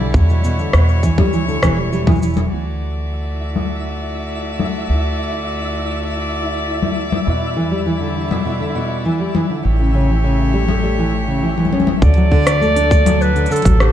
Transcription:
Already playing: G3 E4 D5
0.00 D3
0.14 E2 C#5, kick, cabasa
0.29 B2, cabasa
0.44 B2, cabasa
0.59 D3, cabasa
0.73 E2 B2, cross-stick, cabasa
0.89 cabasa
1.03 E3, kick, cabasa
1.18 G3, kick, low conga
1.33 D2 E3, cabasa
1.48 D3, cabasa
1.63 E1 E3, kick, cross-stick, cabasa
1.78 G3
1.93 G3, cabasa
2.07 E3, kick, low conga, cabasa
2.11 cabasa
2.15 cabasa
2.19 cabasa
2.22 E3, cabasa
2.26 cabasa
2.30 cabasa
2.33 low conga, cabasa
2.37 cabasa
2.52 D2 A3 E4 F#4 D5 E5
3.56 low conga
4.60 low conga
4.89 D2
6.83 low conga
7.12 low conga
7.27 E2 B2 G3 E4
7.57 E3
7.71 G3
7.86 E3
8.00 D3
8.31 B2, low conga
8.45 B2
8.60 D3
8.75 B2
9.05 E3
9.20 G3
9.35 E3, low conga
9.50 D3
9.64 A1 A3 G4 C#5
9.79 C#3
9.94 C#3
10.09 E3
10.24 C#3
10.54 G3
10.68 A3, low conga
10.83 G3
10.98 E3
11.27 C#3
11.43 E3
11.57 E3, low conga
11.65 low conga
11.72 C#4, low conga
11.80 low conga
11.87 low conga
12.02 D2 D3 F#3 D4 A4 D5, kick, cabasa
12.17 F#3, cabasa
12.31 D3, kick
12.47 cross-stick, open hi-hat, cabasa
12.61 A3, cabasa
12.76 D4, open hi-hat, cabasa
12.91 A3, kick, cabasa
13.06 F#3, open hi-hat, low conga, cabasa
13.21 B4, cabasa
13.36 D3, open hi-hat, cabasa
13.46 open hi-hat
13.50 D3 A4, cabasa
13.56 open hi-hat
13.65 A1 F#3, kick, open hi-hat, cabasa
13.80 D3 G4, cross-stick, cabasa

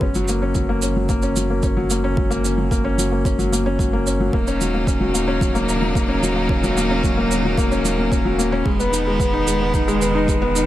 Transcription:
0.01 F#1 C#4, kick
0.15 F#3, shaker
0.28 A#3, shaker
0.42 C#4
0.55 F#3, kick, shaker
0.69 A#3
0.82 C#4, shaker
0.96 F#3
1.09 A#3, kick, shaker
1.22 C#4, shaker
1.36 F#3, shaker
1.50 A#3
1.63 C#4, kick, shaker
1.77 F#3
1.90 A#3, shaker
2.04 C#4
2.17 F#3, kick
2.30 A#3, shaker
2.44 C#4, shaker
2.58 F#3
2.71 A#3, kick, shaker
2.84 C#4
2.98 F#3, shaker
3.12 A#3
3.25 C#4, kick, shaker
3.39 F#3, shaker
3.52 A#3, shaker
3.66 C#4
3.79 F#3, kick, shaker
3.93 A#3
4.07 C#4, shaker
4.20 F#3
4.33 D#1 C#3 F#3 A#3 D#4, kick
4.47 C#4, shaker
4.61 F#3, shaker
4.74 A#3
4.87 C#4, kick, shaker
5.00 F#3
5.14 A#3, shaker
5.27 C#4
5.41 F#3, kick, shaker
5.55 A#3, shaker
5.69 C#4, shaker
5.82 F#3
5.95 A#3, kick, shaker
6.08 C#4
6.22 F#3, shaker
6.36 A#3
6.49 C#4, kick
6.63 F#3, shaker
6.77 A#3, shaker
6.90 C#4
7.03 F#3, kick, shaker
7.17 A#3
7.31 C#4, shaker
7.44 F#3
7.58 A#3, kick, shaker
7.71 C#4, shaker
7.84 F#3, shaker
7.98 A#3
8.11 C#4, kick, shaker
8.25 F#3
8.38 A#3, shaker
8.52 C#4
8.66 E1 D#3 G#3 B3, kick
8.80 B3, shaker
8.93 D#4, shaker
9.07 G#3
9.20 B3, kick, shaker
9.33 D#4
9.47 G#3, shaker
9.61 B3
9.74 D#4, kick, shaker
9.88 G#3, shaker
10.02 B3, shaker
10.15 D#4
10.28 G#3, kick, shaker
10.42 B3
10.55 D#4, shaker

